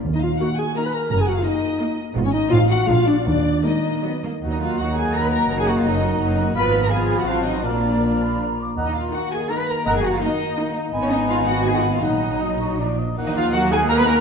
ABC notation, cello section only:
X:1
M:3/4
L:1/16
Q:1/4=166
K:Ebm
V:1 name="Cello section"
E,,4 z8 | G,,4 z8 | A,,4 =A,,4 B,,4 | E,4 A,2 B,2 C2 B,2 |
z E F2 G2 A2 B c B2 | B A G F E6 z2 | c3 B A3 G F2 E2 | =D8 z4 |
z E F2 G2 A2 B c B2 | B A G F E6 z2 | z D E2 F2 G2 A G2 F | E8 z4 |
z E, F,2 G,2 A,2 B, C B,2 |]